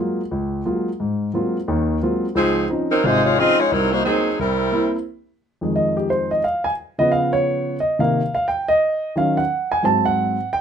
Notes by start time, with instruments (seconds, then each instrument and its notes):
Already playing: grand piano F#3 G#3 A#3
0.00 grand piano F4
0.31 grand piano C#2
0.65 grand piano F#3 G#3 A#3 F4
1.00 grand piano G#2
1.34 grand piano F#3 G#3 A#3 C4 F4
1.68 grand piano D#2 D#3
2.03 grand piano F#3 G#3 A#3 C4 F4
2.35 grand piano C#2 F3, saxophone section F3 C4 D#4 G#4
2.70 grand piano F3 C4 C#4 D#4
2.91 saxophone section F#3 C4 D#4 A#4
3.04 grand piano G#1 C3, saxophone section G#3 D#4 F4 C5
3.25 saxophone section G#3 D#4 F4 C#5
3.38 grand piano F3 C4 C#4 D#4, saxophone section C4 F4 G#4 D#5
3.59 saxophone section G#3 D#4 F4 C#5
3.72 grand piano C2, saxophone section F#3 C4 D#4 A#4
3.93 saxophone section A#3 D#4 F#4 C5
4.05 saxophone section F#3 C4 D#4 G#4, grand piano A#3 C4 D#4
4.39 grand piano C2, saxophone section G3 C4 E4 A#4
4.72 grand piano A#3 C4 E4
5.61 grand piano F2 D#3 G#3
5.76 grand piano D#5
5.97 grand piano G4
6.10 grand piano C5
6.31 grand piano D#5
6.44 grand piano F5
6.64 grand piano G#5
6.98 grand piano C#3 F3 B3 D#5
7.12 grand piano F5
7.33 grand piano C#5
7.80 grand piano D#5
7.99 grand piano C3 D#3 A#3 F5
8.35 grand piano F5
8.48 grand piano G5
8.68 grand piano D#5
9.16 grand piano D#3 F#3 C#4 F5
9.37 grand piano F#5
9.72 grand piano G#5
9.83 grand piano G#2 F#3 C4 A5
10.05 grand piano F#5
10.53 grand piano G5